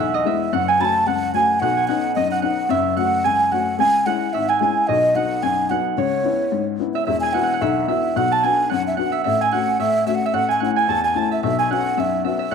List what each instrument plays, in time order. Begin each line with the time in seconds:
Already playing: upright piano E1 B1, harp E5 F#5 G#5
0.00 flute E5
0.14 harp D#5, flute D#5
0.25 upright piano G#3 B3 E4, harp E5, flute E5
0.53 upright piano F#1 F#2, harp F#5, flute F#5
0.68 harp G#5, flute G#5
0.79 upright piano A3 C#4 F#4, harp A5, flute B5
0.85 flute A5
1.07 upright piano C#2, flute F#5, harp F#5
1.34 upright piano A3 C#4 F#4, flute G#5, harp G#5
1.60 upright piano B1 B2, flute F#5, harp F#5
1.77 harp G#5
1.88 upright piano B3 C#4 D#4, flute F#5, harp F#5
2.15 upright piano F#2, flute D#5, harp D#5
2.31 flute F#5, harp F#5
2.42 upright piano B3 C#4 D#4, harp F#5, flute F#5
2.69 upright piano F#1 F#2, harp E5, flute E5
2.96 upright piano A3 C#4 F#4, harp F#5, flute F#5
3.24 upright piano C#2, harp G#5, flute G#5
3.51 upright piano A3 C#4 F#4, harp F#5, flute F#5
3.79 upright piano C#2, flute G#5, harp G#5
4.06 upright piano G#3 C#4 E4, flute F#5, harp F#5
4.33 upright piano G#1, flute E5, harp E5
4.49 flute G#5, harp G#5
4.60 upright piano G#3 C#4 E4, flute G#5, harp G#5
4.87 upright piano B1 B2, flute D#5, harp D#5
5.15 upright piano F#3 B3 D#4, flute F#5, harp F#5
5.43 upright piano F#2, flute G#5, harp G#5
5.70 upright piano F#3 B3 D#4, flute F#5, harp F#5
5.97 upright piano C#2 C#3, flute C#5, harp C#5
6.24 upright piano B3 C#4 E4
6.52 upright piano G#2
6.79 upright piano B3 C#4 E4
6.94 flute E5, harp E5
7.06 upright piano E1 E2, flute E5, harp E5
7.20 flute G#5, harp G#5
7.33 upright piano B3 E4 F#4, flute F#5, harp F#5
7.43 harp F#5
7.53 harp F#5
7.61 upright piano B1, flute E5, harp E5
7.88 upright piano B3 E4 F#4, harp E5, flute E5
8.16 upright piano B1 B2, harp F#5, flute F#5
8.31 harp A5, flute A5
8.43 upright piano B3 D4 F#4, harp G#5, flute G#5
8.70 upright piano F#2, harp F#5, flute F#5
8.87 flute E5
8.97 upright piano B3 D4 F#4, harp F#5, flute F#5
9.12 harp E5, flute E5
9.24 upright piano A1 A2, harp E5, flute E5
9.41 harp G#5, flute G#5
9.52 upright piano A3 C#4 F#4, flute F#5, harp F#5
9.79 upright piano A2, harp E5, flute E5
10.06 upright piano A3 C#4 F#4, harp E5, flute E5
10.15 flute F#5
10.26 harp E5, flute E5
10.33 upright piano A1 A2, harp F#5, flute F#5
10.49 harp G#5, flute G#5
10.60 upright piano A3 C#4 E4, harp F#5
10.65 flute F#5
10.76 harp G#5, flute G#5
10.88 upright piano E2, harp A5, flute A5
11.04 harp G#5, flute G#5
11.15 upright piano A3 C#4 E4, harp A5, flute A5
11.31 harp E5, flute E5
11.43 upright piano B1 B2, harp E5, flute E5
11.59 harp G#5, flute G#5
11.70 upright piano B3 C#4 F#4, harp F#5, flute F#5
11.97 upright piano F#2, harp E5, flute E5
12.24 upright piano B3 C#4 F#4, harp E5, flute E5
12.39 harp E5
12.51 upright piano A1 A2, harp F#5